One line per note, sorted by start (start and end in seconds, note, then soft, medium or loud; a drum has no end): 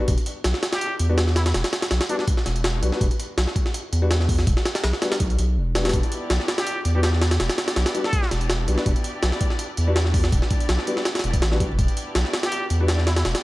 0.08 0.17 E1 loud
0.08 kick loud
0.08 closed hi-hat medium
0.18 closed hi-hat soft
0.26 closed hi-hat medium
0.44 0.54 B1 loud
0.44 snare loud
0.44 closed hi-hat medium
0.54 snare soft
0.63 snare loud
0.63 closed hi-hat medium
0.73 0.95 G4 loud
0.73 snare loud
0.73 closed hi-hat medium
0.81 closed hi-hat loud
0.99 1.53 E2 medium
0.99 closed hi-hat medium
1.09 1.19 G3 medium
1.09 1.19 B3 medium
1.09 1.19 D4 medium
1.09 1.19 F#4 loud
1.18 snare loud
1.18 closed hi-hat loud
1.27 snare soft
1.36 1.42 E4 medium
1.36 snare loud
1.36 closed hi-hat medium
1.46 1.52 E4 medium
1.46 snare loud
1.46 closed hi-hat medium
1.54 1.63 E1 loud
1.54 snare loud
1.54 closed hi-hat medium
1.64 snare loud
1.64 closed hi-hat medium
1.73 snare loud
1.73 closed hi-hat medium
1.82 snare loud
1.82 closed hi-hat medium
1.91 2.00 B1 loud
1.91 snare loud
1.91 closed hi-hat medium
2.01 snare loud
2.01 closed hi-hat medium
2.09 2.20 G3 medium
2.09 2.20 B3 medium
2.09 2.20 D4 medium
2.09 2.16 D4 medium
2.09 2.20 F#4 loud
2.09 closed hi-hat medium
2.19 2.25 D4 medium
2.19 snare medium
2.28 kick loud
2.28 closed hi-hat loud
2.37 snare soft
2.46 2.81 E1 loud
2.46 snare medium
2.46 closed hi-hat medium
2.56 closed hi-hat soft
2.64 snare loud
2.64 closed hi-hat loud
2.82 2.91 B1 loud
2.82 2.90 G3 medium
2.82 2.90 B3 medium
2.82 2.90 D4 medium
2.82 2.90 F#4 medium
2.82 closed hi-hat medium
2.92 3.02 G3 loud
2.92 3.02 B3 medium
2.92 3.02 D4 medium
2.92 3.02 F#4 loud
2.92 snare medium
3.01 3.10 E1 loud
3.01 kick loud
3.01 closed hi-hat medium
3.11 closed hi-hat soft
3.20 closed hi-hat medium
3.37 3.46 B1 loud
3.37 snare loud
3.37 closed hi-hat medium
3.47 snare soft
3.56 kick medium
3.56 closed hi-hat medium
3.66 snare soft
3.74 closed hi-hat medium
3.93 4.46 E2 medium
3.93 closed hi-hat medium
4.02 4.12 G3 loud
4.02 4.12 B3 medium
4.02 4.12 D4 medium
4.02 4.12 F#4 loud
4.11 snare loud
4.11 closed hi-hat medium
4.21 snare soft
4.29 kick loud
4.29 open hi-hat medium
4.39 snare medium
4.47 4.56 E1 loud
4.47 kick loud
4.47 closed hi-hat medium
4.57 snare medium
4.66 snare loud
4.66 closed hi-hat medium
4.75 snare loud
4.75 closed hi-hat medium
4.84 4.93 B1 loud
4.84 snare loud
4.84 closed hi-hat medium
4.93 snare soft
5.02 5.13 G3 medium
5.02 5.13 B3 medium
5.02 5.13 D4 medium
5.02 5.13 F#4 loud
5.02 snare loud
5.02 closed hi-hat medium
5.12 snare loud
5.12 closed hi-hat medium
5.20 5.37 B1 medium
5.20 kick loud
5.20 closed hi-hat medium
5.30 closed hi-hat soft
5.38 5.59 B1 medium
5.38 closed hi-hat medium
5.57 5.92 E1 loud
5.75 5.83 G3 medium
5.75 5.83 B3 medium
5.75 5.83 D4 medium
5.75 5.83 F#4 medium
5.75 snare loud
5.75 closed hi-hat medium
5.85 5.95 G3 medium
5.85 5.95 B3 medium
5.85 5.95 D4 medium
5.85 5.95 F#4 loud
5.85 snare medium
5.85 closed hi-hat medium
5.89 snare medium
5.89 closed hi-hat medium
5.93 6.02 E1 loud
5.93 6.83 B3 loud
5.93 6.83 D4 medium
5.93 6.83 E4 medium
5.93 6.83 G4 medium
5.93 6.83 D5 loud
5.93 kick loud
5.93 closed hi-hat medium
6.03 closed hi-hat soft
6.12 closed hi-hat medium
6.30 6.39 B1 loud
6.30 snare loud
6.30 closed hi-hat medium
6.40 snare soft
6.48 snare loud
6.48 closed hi-hat medium
6.58 6.80 G4 medium
6.58 snare loud
6.58 closed hi-hat medium
6.67 closed hi-hat medium
6.85 7.39 E2 medium
6.85 7.38 B3 medium
6.85 7.38 D4 medium
6.85 7.38 E4 medium
6.85 7.38 G4 medium
6.85 7.38 D5 loud
6.85 closed hi-hat medium
6.95 7.05 G3 medium
6.95 7.05 B3 medium
6.95 7.05 D4 medium
6.95 7.05 F#4 loud
6.95 7.00 G4 medium
7.03 7.10 G4 medium
7.03 snare loud
7.03 closed hi-hat loud
7.13 snare soft
7.21 snare loud
7.21 closed hi-hat medium
7.31 snare loud
7.31 closed hi-hat medium
7.40 7.49 E1 loud
7.40 8.30 B3 medium
7.40 8.30 D4 medium
7.40 8.30 E4 medium
7.40 8.30 G4 medium
7.40 8.30 D5 loud
7.40 snare loud
7.40 closed hi-hat medium
7.49 snare loud
7.49 closed hi-hat medium
7.58 snare loud
7.58 closed hi-hat medium
7.68 snare loud
7.68 closed hi-hat medium
7.76 7.85 B1 loud
7.76 snare loud
7.76 closed hi-hat medium
7.86 snare loud
7.86 closed hi-hat medium
7.95 8.06 G3 medium
7.95 8.06 B3 medium
7.95 8.06 D4 medium
7.95 8.06 F#4 loud
7.95 closed hi-hat medium
8.04 8.31 A4 loud
8.04 snare medium
8.13 kick loud
8.13 closed hi-hat medium
8.23 snare soft
8.31 8.67 E1 loud
8.31 8.66 B3 medium
8.31 8.66 D4 medium
8.31 8.66 E4 medium
8.31 8.66 G4 medium
8.31 8.66 D5 medium
8.31 snare medium
8.31 closed hi-hat medium
8.41 closed hi-hat soft
8.50 snare loud
8.50 closed hi-hat loud
8.68 8.77 B1 loud
8.68 8.75 G3 medium
8.68 8.75 B3 medium
8.68 8.84 B3 medium
8.68 8.75 D4 medium
8.68 8.85 D4 medium
8.68 8.84 E4 medium
8.68 8.75 F#4 medium
8.68 8.85 G4 medium
8.68 8.84 D5 medium
8.68 closed hi-hat medium
8.78 8.88 G3 medium
8.78 8.88 B3 medium
8.78 8.88 D4 medium
8.78 8.88 F#4 loud
8.78 snare medium
8.86 8.95 E1 loud
8.86 9.76 B3 loud
8.86 9.76 D4 medium
8.86 9.76 E4 medium
8.86 9.76 G4 medium
8.86 9.76 D5 loud
8.86 kick loud
8.86 closed hi-hat medium
8.96 closed hi-hat soft
9.04 closed hi-hat medium
9.23 9.32 B1 loud
9.23 snare loud
9.23 closed hi-hat medium
9.32 snare soft
9.41 kick medium
9.41 closed hi-hat medium
9.50 snare soft
9.59 closed hi-hat loud
9.77 10.31 E2 medium
9.77 10.31 B3 medium
9.77 10.30 D4 medium
9.77 10.31 E4 medium
9.77 10.30 G4 medium
9.77 10.30 D5 loud
9.77 closed hi-hat medium
9.87 9.97 G3 loud
9.87 9.97 B3 medium
9.87 9.97 D4 medium
9.87 9.97 F#4 loud
9.96 snare loud
9.96 closed hi-hat loud
10.06 snare soft
10.14 kick loud
10.14 open hi-hat medium
10.24 snare medium
10.32 10.41 E1 loud
10.32 11.22 B3 medium
10.32 11.22 D4 medium
10.32 11.22 E4 medium
10.32 11.22 G4 medium
10.32 11.22 D5 loud
10.32 kick loud
10.32 closed hi-hat medium
10.42 snare medium
10.50 kick loud
10.50 closed hi-hat medium
10.60 closed hi-hat soft
10.69 10.78 B1 loud
10.69 snare loud
10.69 closed hi-hat medium
10.79 snare soft
10.87 10.98 G3 medium
10.87 10.98 B3 medium
10.87 10.98 D4 medium
10.87 10.98 F#4 medium
10.87 closed hi-hat medium
10.97 snare medium
11.05 snare loud
11.05 closed hi-hat medium
11.15 snare medium
11.15 closed hi-hat medium
11.19 snare medium
11.19 closed hi-hat medium
11.24 11.41 E1 loud
11.24 11.32 B3 loud
11.24 11.32 D4 medium
11.24 11.32 E4 medium
11.24 11.32 G4 medium
11.24 11.32 D5 loud
11.24 closed hi-hat medium
11.34 kick loud
11.34 closed hi-hat medium
11.42 11.62 A1 loud
11.42 snare loud
11.42 closed hi-hat medium
11.52 11.62 G3 medium
11.52 11.62 B3 medium
11.52 11.62 D4 medium
11.52 11.62 F#4 loud
11.52 snare soft
11.60 11.72 B1 loud
11.60 11.77 B3 medium
11.60 11.77 D4 medium
11.60 11.77 E4 medium
11.60 11.77 G4 medium
11.60 11.77 D5 loud
11.60 kick medium
11.60 closed hi-hat medium
11.70 11.78 E1 loud
11.78 11.88 E1 loud
11.78 12.68 B3 loud
11.78 12.68 D4 medium
11.78 12.68 E4 medium
11.78 12.68 G4 medium
11.78 12.68 D5 loud
11.78 kick loud
11.78 closed hi-hat medium
11.88 closed hi-hat soft
11.97 closed hi-hat medium
12.15 12.24 B1 loud
12.15 snare loud
12.15 closed hi-hat medium
12.25 snare soft
12.33 snare loud
12.33 closed hi-hat medium
12.43 12.65 G4 loud
12.43 snare loud
12.43 closed hi-hat medium
12.52 closed hi-hat loud
12.70 13.24 E2 medium
12.70 13.23 B3 loud
12.70 13.23 D4 medium
12.70 13.23 E4 medium
12.70 13.23 G4 medium
12.70 13.23 D5 loud
12.70 closed hi-hat medium
12.80 12.90 G3 medium
12.80 12.90 B3 medium
12.80 12.90 D4 medium
12.80 12.90 F#4 loud
12.88 snare loud
12.88 closed hi-hat loud
12.98 snare soft
13.07 13.13 E4 medium
13.07 snare loud
13.07 closed hi-hat medium
13.16 13.22 E4 medium
13.16 snare loud
13.16 closed hi-hat medium
13.25 13.34 E1 loud
13.25 13.43 B3 loud
13.25 13.43 D4 medium
13.25 13.43 E4 medium
13.25 13.43 G4 medium
13.25 13.43 D5 loud
13.25 snare loud
13.25 closed hi-hat medium
13.35 snare loud
13.35 closed hi-hat medium